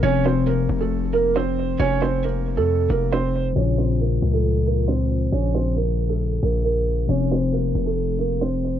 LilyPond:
<<
  \new Staff \with { instrumentName = "Felt piano" } { \time 4/4 \key bes \minor \tempo 4 = 136 <des' des''>8 <c' c''>8 <bes bes'>8. <a a'>8. <bes bes'>8 <c' c''>4 | <des' des''>8 <c' c''>8 <bes bes'>8. <a a'>8. <bes bes'>8 <c' c''>4 | <des' des''>8 <c' c''>8 <bes bes'>8. <a a'>8. <bes bes'>8 <c' c''>4 | <des' des''>8 <c' c''>8 <bes bes'>8. <a a'>8. <bes bes'>8 <bes bes'>4 |
<des' des''>8 <c' c''>8 <bes bes'>8. <a a'>8. <bes bes'>8 <c' c''>4 | }
  \new Staff \with { instrumentName = "Tine electric piano" } { \clef bass \time 4/4 \key bes \minor <c f c'>1~ | <c f c'>1 | <bes, des f f'>1~ | <bes, des f f'>1 |
<c f c'>1 | }
  \new Staff \with { instrumentName = "808-style bass" } { \clef bass \time 4/4 \key bes \minor f,,4. f,,2~ f,,8 | f,,4.~ f,,16 f,8. f,,4. | bes,,4. des,2~ des,8 | bes,,2~ bes,,8 bes,,4. |
f,,4. f,,2~ f,,8 | }
>>